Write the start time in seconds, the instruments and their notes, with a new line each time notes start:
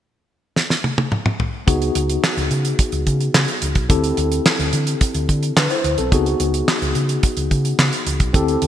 0.56 snare
0.70 snare
0.84 high tom
0.98 high tom
1.12 mid tom
1.26 mid tom
1.40 floor tom
1.67 fingered electric bass C#2, tine electric piano B3 D#4 F#4 G#4, kick, closed hi-hat
1.82 closed hi-hat
1.95 fingered electric bass C#2, closed hi-hat
2.10 closed hi-hat
2.24 snare, clap
2.37 fingered electric bass C#2, closed hi-hat
2.51 fingered electric bass C#3, closed hi-hat
2.65 closed hi-hat
2.79 kick, closed hi-hat
2.92 fingered electric bass C#2, closed hi-hat
3.07 fingered electric bass C#3, kick, closed hi-hat
3.20 closed hi-hat
3.34 fingered electric bass C#3, snare, clap
3.48 closed hi-hat
3.62 fingered electric bass C#2, closed hi-hat
3.75 fingered electric bass B1, kick, closed hi-hat
3.89 fingered electric bass D2, tine electric piano C4 E4 G4 A4, kick, closed hi-hat
4.04 closed hi-hat
4.17 fingered electric bass D2, closed hi-hat
4.32 closed hi-hat
4.46 snare, clap
4.59 fingered electric bass D2, closed hi-hat
4.73 fingered electric bass D3, closed hi-hat
4.87 closed hi-hat
5.01 kick, closed hi-hat
5.14 fingered electric bass D2, closed hi-hat
5.29 fingered electric bass D3, kick, closed hi-hat
5.43 closed hi-hat
5.56 fingered electric bass D3, tine electric piano D4 B4, snare, clap
5.70 tine electric piano E4 C5, closed hi-hat
5.84 fingered electric bass D2, closed hi-hat
5.98 fingered electric bass B1, tine electric piano C4 A4, closed hi-hat
6.11 fingered electric bass C#2, tine electric piano B3 D#4 F#4 G#4, kick, closed hi-hat
6.26 closed hi-hat
6.40 fingered electric bass C#2, closed hi-hat
6.54 closed hi-hat
6.68 snare, clap
6.82 fingered electric bass C#2, closed hi-hat
6.95 fingered electric bass C#3, closed hi-hat
7.09 closed hi-hat
7.23 kick, closed hi-hat
7.37 fingered electric bass C#2, closed hi-hat
7.51 fingered electric bass C#3, kick, closed hi-hat
7.65 closed hi-hat
7.79 fingered electric bass C#3, snare, clap
7.93 closed hi-hat
8.06 fingered electric bass C#2, closed hi-hat
8.20 fingered electric bass B1, kick, closed hi-hat
8.33 fingered electric bass D2, tine electric piano C4 E4 G4 A4, kick, closed hi-hat
8.48 closed hi-hat
8.62 fingered electric bass D2, closed hi-hat